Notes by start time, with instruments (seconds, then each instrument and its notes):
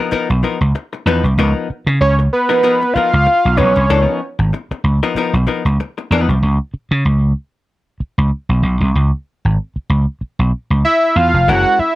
Already playing: hollow-body jazz guitar F3 B3 D#4 A#4
0.11 hollow-body jazz guitar F3 B3 D#4 A#4, muted slap bass stroke
0.30 slap bass B1, muted hollow-body jazz guitar stroke
0.43 hollow-body jazz guitar F3 B3 D#4 A#4
0.61 slap bass C#2, muted hollow-body jazz guitar stroke
0.75 muted hollow-body jazz guitar stroke
0.93 muted hollow-body jazz guitar stroke
1.06 slap bass E2, hollow-body jazz guitar F3 B3 D#4 B4
1.23 slap bass C2, muted hollow-body jazz guitar stroke
1.38 slap bass C#2, hollow-body jazz guitar F3 B3 D#4 A#4
1.70 muted slap bass stroke
1.87 slap bass C#3, muted hollow-body jazz guitar stroke
2.01 slap bass C#2, analog synth lead C#5, muted hollow-body jazz guitar stroke
2.19 muted hollow-body jazz guitar stroke
2.33 analog synth lead B4
2.49 hollow-body jazz guitar F3 B3 D#4 A#4
2.63 hollow-body jazz guitar F3 B3 D#4 A#4
2.81 muted hollow-body jazz guitar stroke
2.94 hollow-body jazz guitar F3 B3 D#4 A#4, analog synth lead F5, muted slap bass stroke
3.13 slap bass C#2, muted hollow-body jazz guitar stroke
3.26 muted hollow-body jazz guitar stroke
3.45 slap bass B1
3.57 slap bass B1, hollow-body jazz guitar F3 B3 D#4 B4, analog synth lead C#5
3.76 slap bass C2, muted hollow-body jazz guitar stroke
3.90 slap bass C#2, hollow-body jazz guitar E3 A#3 D4 A4
4.02 hollow-body jazz guitar F3 B3 D#4 A#4
4.39 slap bass G#1, muted hollow-body jazz guitar stroke
4.53 muted hollow-body jazz guitar stroke
4.71 muted slap bass stroke, muted hollow-body jazz guitar stroke
4.84 slap bass C#2
5.03 hollow-body jazz guitar F3 B3 D#4 A#4
5.15 hollow-body jazz guitar F3 B3 D#4 A#4, muted slap bass stroke
5.33 slap bass B1, muted hollow-body jazz guitar stroke
5.47 hollow-body jazz guitar F3 B3 D#4 A#4
5.65 slap bass C#2, muted hollow-body jazz guitar stroke
5.80 muted hollow-body jazz guitar stroke
5.98 muted hollow-body jazz guitar stroke
6.11 slap bass E2, hollow-body jazz guitar F3 B3 D#4 B4
6.28 slap bass C2, muted hollow-body jazz guitar stroke
6.43 slap bass C#2
6.74 muted slap bass stroke
6.91 slap bass C#3
7.05 slap bass C#2
8.00 muted slap bass stroke
8.18 slap bass C#2
8.49 slap bass B1
8.63 slap bass B1
8.81 slap bass C2
8.95 slap bass C#2
9.45 slap bass G#1
9.76 muted slap bass stroke
9.90 slap bass C#2
10.21 muted slap bass stroke
10.39 slap bass B1
10.70 slap bass C#2
10.85 analog synth lead E5
11.16 slap bass E2, analog synth lead F5
11.34 slap bass F1
11.48 slap bass F#1, hollow-body jazz guitar G#3 C#4 E4 A#4, analog synth lead F#5
11.79 analog synth lead E5, muted slap bass stroke